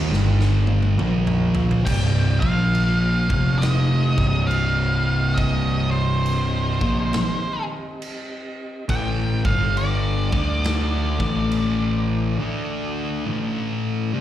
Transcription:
Already playing: D#3 A#3 D#4 F4 C5
0.10 G1 G2 D3 G3 D4 A4, snare
0.41 snare
0.67 high tom
0.83 high tom
0.98 A#1 A#2 F3 A#3 F4 C5, mid tom
1.27 mid tom
1.55 floor tom
1.71 floor tom
1.85 C1 C2 G2 C3 C4 G4 D5 G5, kick, crash
2.40 A#1 A#2 F3 A#3 F4 C5 F5, kick
2.75 crash
3.30 F1 F2 C3 F3 C4 G4, kick
3.59 D#5, crash
3.63 snare
4.17 C1 C2 G2 C3 D#5, kick
4.47 F5, crash
5.34 D#5, kick, crash
5.91 C5 D#5
6.26 crash
6.81 A#1 A#2 F3 A#3, kick
7.13 snare, crash
8.02 crash
8.89 A1 A2 E3 A3 E4 A4 G5, kick, crash
9.44 G1 G2 D3 G3 D4 F5, kick
9.77 D5, crash
10.32 D2 D3 A3 D4 D5, kick
10.64 snare, crash
11.20 A1 A2 E3 A3 E4, kick
11.52 crash
12.38 D3 A3 D4 A4 D5
13.26 A2 E3 A3 E4
14.13 C3 G3 C4 G4 D5

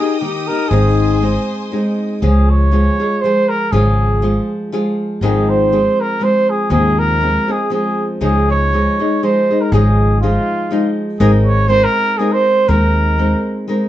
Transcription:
Already playing: A#4 G5 D#6
0.00 A#3 D#4 G4 G#4
0.20 D#3 A#3 D#4 G4
0.47 A#3 D#4 G4 A#4
0.69 G#1 G#2 D#3 G#3 C4 D#4 G#4 C5 G#5
1.22 G#3 C4 D#4 G#4
1.72 G#3 C4 D#4 G#4
2.22 C#2 C#3 F3 G#3 F4 G#4
2.50 C#5
2.72 F3 G#3 F4 G#4
3.00 G#3 F4 G#4
3.21 F3 G#3 F4 C5
3.25 G#4
3.48 A#4
3.72 G#1 C#3 F3 G#3 F4 G#4
4.22 F3 G#3 F4 G#4
4.72 F3 G#3 F4 G#4
5.21 G#1 G#2 D#3 F3 G#3 C4 G#4
5.49 C5
5.72 F3 G#3 C4 G#4
6.01 A#4
6.20 F3 G#3 C4 G#4 C5
6.50 G#4
6.70 D#2 G#2 D#3 F3 G#3 C4 G#4
6.99 A#4
7.21 F3 G#3 C4 G#4
7.48 F3 G#3 C4 G#4
7.70 F3 G#3 C4 G#4
8.21 C#2 C#3 F3 G#3 D#4 G#4
8.50 C#5
8.73 F3 G#3 D#4 G#4
8.99 G#3 D#4 G#4
9.23 F3 G#3 D#4 G#4 C5
9.51 G#3 D#4 G#4
9.61 A#4
9.72 G#1 C#3 F3 G#3 D#4 G#4
10.21 F3 G#3 D#4 F4 G#4
10.71 F3 G#3 D#4 G#4
11.19 G#1 G#3 C4 D#4 G#4 A#4
11.45 C#5
11.68 G#3 C4 D#4 A#4 C5
11.84 A#4
12.18 G#3 C4 D#4 G#4 A#4
12.32 C5
12.68 D#2 G#3 C4 D#4 A#4
13.18 G#3 C4 D#4 A#4
13.68 G#3 C4 D#4 A#4

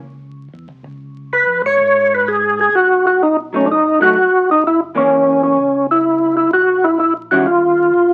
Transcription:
Already playing: C#2
0.54 E2
0.69 C2
0.84 C#2
1.33 B4
1.47 F2
1.63 G#2 C#5
1.78 G#2
2.14 B4
2.28 G#4
2.61 G#4
2.73 B1 F#4
3.07 F#4
3.23 D#4
3.53 F#3 A3 C#4 D#4
3.66 F#1 D4
3.72 D#4
4.00 F#3 A3 D#4 F#4
4.16 E1
4.51 D#4
4.62 F#1
4.67 E4
4.95 E3 A#3 C#4
5.43 C#4
5.57 C#2
5.91 E4
6.37 E4
6.51 A#1 F#4
6.84 E4
6.99 E4
7.31 D#3 G3 C#4 E4 F#4
7.46 D#2 F4
7.94 A#1

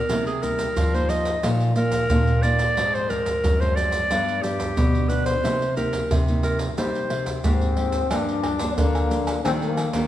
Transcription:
Already playing: A#4
0.09 C3 G3 A#3 D#4, pandeiro, maracas, surdo
0.27 G#4, pandeiro, maracas
0.42 G3 A#3 D#4 A#4, pandeiro, maracas, surdo
0.59 pandeiro, maracas, surdo
0.76 G2 F3, pandeiro, maracas, surdo
0.93 G3 A#3 D#4 C5, pandeiro, maracas
1.09 D#5, pandeiro, maracas
1.25 pandeiro, maracas
1.43 A#2 F3 A#3 D#4, pandeiro, maracas, surdo
1.60 pandeiro, maracas
1.76 A#2 A#4, pandeiro, maracas
1.92 pandeiro, maracas, surdo
2.10 F2 A#2 F3 A#3 D#4, pandeiro, maracas, surdo
2.28 pandeiro, maracas
2.42 F3 A#3 D#4 D5, pandeiro, maracas, surdo
2.59 pandeiro, maracas, surdo
2.77 G#2 F3 G#3 C4, pandeiro, maracas, surdo
2.95 C5, pandeiro, maracas
3.09 F3 G#3 C4 A#4, pandeiro, maracas, surdo
3.26 pandeiro, maracas, surdo
3.44 F#2 G#2, pandeiro, maracas, surdo
3.60 F3 G#3 C4 C5, pandeiro, maracas
3.76 D5, pandeiro, maracas
3.92 pandeiro, maracas
4.10 G2 F3 B3 D4, pandeiro, maracas, surdo
4.28 pandeiro, maracas
4.42 G2 G4, pandeiro, maracas
4.60 pandeiro, maracas, surdo
4.77 B2 D3 F3 B3 D4, pandeiro, maracas, surdo
4.95 pandeiro, maracas
5.09 F3 B3 D4 B4, pandeiro, maracas
5.26 C5, pandeiro, maracas, surdo
5.44 C3 A#3 D#4 G4, pandeiro, maracas, surdo
5.62 pandeiro, maracas
5.76 A#3 D#4 G4 A#4, pandeiro, maracas, surdo
5.93 pandeiro, maracas, surdo
6.11 G2 C3, pandeiro, maracas, surdo
6.28 A#3 D#4 G4, pandeiro, maracas
6.43 A#4, pandeiro, maracas
6.59 pandeiro, maracas
6.77 C3 G3 A#3 D#4 G4 C5, pandeiro, maracas, surdo
6.95 pandeiro, maracas
7.10 C3, pandeiro
7.26 pandeiro, maracas, surdo
7.44 G#2 A#3 C4 D#4 G4, pandeiro, maracas, surdo
7.61 pandeiro, maracas
7.77 A#3 D#4 G4, pandeiro, surdo
7.92 pandeiro, maracas, surdo
8.11 G2 F3 A#3 D4, pandeiro, tamborim, maracas, surdo
8.29 pandeiro, maracas
8.44 pandeiro, tamborim, surdo
8.59 F3 A#3 D4, pandeiro, maracas, surdo
8.77 D3 A#3, pandeiro, maracas, surdo
8.95 pandeiro, tamborim, maracas
9.11 F3 A#3 D4, pandeiro, maracas
9.27 pandeiro, tamborim, maracas
9.44 D#3 G3 A#3 C4 D4, pandeiro, tamborim, maracas, surdo
9.62 A#3, pandeiro, maracas
9.77 pandeiro, tamborim, maracas
9.93 D#3 G3 A#3 D4, pandeiro, maracas, surdo

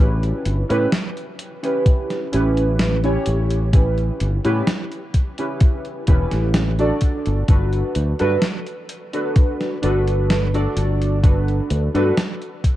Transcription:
Already playing: C#4
0.00 A1 E4 G4 B4
0.23 closed hi-hat
0.46 G1, closed hi-hat
0.69 A2 C#4 E4 G4 B4, closed hi-hat
0.92 snare, closed hi-hat
1.17 closed hi-hat
1.39 closed hi-hat
1.63 C#4 E4 G4 B4, closed hi-hat
1.86 kick, closed hi-hat
2.10 snare, closed hi-hat
2.32 A1 C#4 E4 G4 B4, closed hi-hat
2.57 closed hi-hat
2.79 snare, closed hi-hat
3.04 C#4 E4 G4 C#5, closed hi-hat
3.26 A1, closed hi-hat
3.50 closed hi-hat
3.73 C#4 E4 G4 B4, kick, closed hi-hat
3.98 closed hi-hat
4.20 G1, closed hi-hat
4.44 A2 C#4 E4 G4 B4, closed hi-hat
4.67 snare, closed hi-hat
4.92 closed hi-hat
5.14 kick, closed hi-hat
5.38 C#4 E4 G4 B4, closed hi-hat
5.61 kick, closed hi-hat
5.85 closed hi-hat
6.07 E1 C#4 E4 G4 B4, kick, closed hi-hat
6.31 A1, snare, closed hi-hat
6.54 snare, closed hi-hat
6.79 D4 F#4 A4 D5, closed hi-hat
7.01 kick, closed hi-hat
7.26 G1, closed hi-hat
7.48 G1 D4 F#4 A4 B4, kick, closed hi-hat
7.73 closed hi-hat
7.95 D2, closed hi-hat
8.19 G2 D4 F#4 A4 B4, closed hi-hat
8.42 snare, closed hi-hat
8.67 closed hi-hat
8.89 closed hi-hat
9.13 D4 F#4 A4 B4, closed hi-hat
9.36 kick, closed hi-hat
9.61 snare, closed hi-hat
9.82 G1 D4 F#4 A4 B4, closed hi-hat
10.08 closed hi-hat
10.30 snare, closed hi-hat
10.54 D4 F#4 A4 D5, closed hi-hat
10.77 G1, closed hi-hat
11.02 closed hi-hat
11.23 D4 F#4 A4 B4, kick, closed hi-hat
11.48 closed hi-hat
11.70 D2, closed hi-hat
11.94 G2 D4 F#4 A4 B4, closed hi-hat
12.17 snare, closed hi-hat
12.42 closed hi-hat
12.64 kick, closed hi-hat

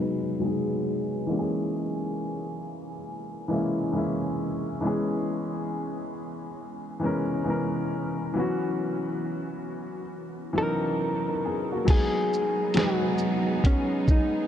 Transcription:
Already playing: F#3 G#3
0.00 B3 D#4 B4
0.40 F#3 G#3 B3
0.44 D#4 G#4
1.27 E3 G#3 A#3
1.31 C#4 G4
1.39 G#4
3.48 E3 G#3 A#3
3.52 C#4 E4
3.92 E3 G#3 A#3
3.96 C#4 E4
4.81 E3 G#3 B3
4.85 C#4 G#4
7.00 E3 G#3 B3
7.04 C#4 A#4
7.44 E3 G#3 B3
7.48 C#4 A#4
8.34 E3 F#3 B3
8.38 C#4 F#4
10.53 E3 F#3 B3
10.57 C#4 D#4 A#4
11.28 D#4 B4
11.45 B3 G#4
11.72 A#3 F#4
11.85 F#3 G#3 B3 D#4 G#4, kick, closed hi-hat, crash
11.89 D#4 G#4
12.33 shaker
12.74 F#3 G#3 B3, snare, closed hi-hat
12.79 D#4 F#4 B4
13.18 shaker
13.64 C#4, kick, closed hi-hat
14.08 D#4, kick, shaker

